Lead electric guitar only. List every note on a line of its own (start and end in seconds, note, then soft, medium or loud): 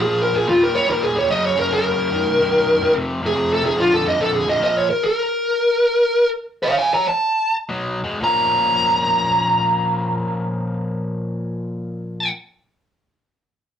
0.00 0.20 G#4 medium
0.22 0.34 A#4 medium
0.36 0.48 G#4 medium
0.49 0.61 F4 medium
0.63 0.75 A#4 medium
0.75 0.88 C#5 medium
0.90 1.03 A#4 medium
1.03 1.16 G#4 medium
1.18 1.31 C#5 medium
1.31 1.45 D#5 medium
1.45 1.58 C#5 medium
1.59 1.72 A#4 medium
1.74 2.93 A#4 medium
3.26 3.51 G#4 medium
3.53 3.65 A4 medium
3.66 3.79 G#4 medium
3.80 3.92 F4 medium
3.94 4.06 A4 medium
4.08 4.20 D#5 medium
4.21 4.34 A4 medium
4.34 4.47 G#4 medium
4.49 4.62 D#5 medium
4.64 4.77 D#5 medium
4.77 4.89 C#5 medium
4.90 5.03 A#4 medium
5.04 6.28 A#4 loud
6.63 6.77 C#5 medium
6.63 6.77 F5 medium
6.78 6.91 F5 medium
6.78 6.92 G#5 medium
6.94 7.07 C#5 medium
6.94 7.07 A#5 medium
7.08 7.53 A5 medium
8.24 12.29 A#5 medium